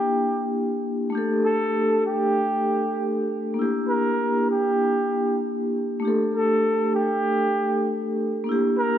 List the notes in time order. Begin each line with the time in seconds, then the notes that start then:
Already playing: A#3 D4 E4 G4
1.10 A3 D4
1.15 G4 A4
1.45 A4
2.06 G4
3.54 A#3 D4
3.59 E4 G4
3.88 A#4
4.51 G4
6.00 A3 D4
6.05 G4 A4
6.35 A4
6.95 G4
8.44 A#3 D4
8.49 E4 G4
8.78 A#4